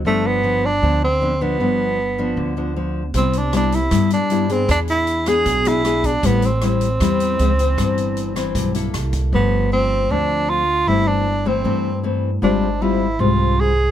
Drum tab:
HH |--------|--------|xxxxxxxx|xxxxxxxx|
SD |--------|--------|--r-r---|r--r--r-|
BD |--------|--------|o---o---|o---o--o|

HH |xxxxxxxx|xxxxxxxx|--------|--------|
SD |--r-r---|r--r--r-|--------|--------|
BD |o---o---|o---o--o|--------|--------|

HH |--------|
SD |--------|
BD |--------|